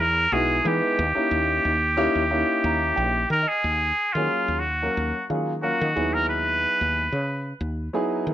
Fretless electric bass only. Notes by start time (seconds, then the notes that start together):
0.00 E2
0.32 B1
0.65 E3
0.99 D#2
1.17 muted fretless electric bass stroke
1.31 D#2
1.65 D#2
2.15 D#2
2.64 D#2
2.97 A#1
3.30 D#3
3.64 D#2
4.15 D#3
4.48 D#2
4.97 D#2
5.30 D#3
5.81 D#3
5.97 D#2
6.81 D#2
7.12 C#3
7.61 D#2
8.27 D#3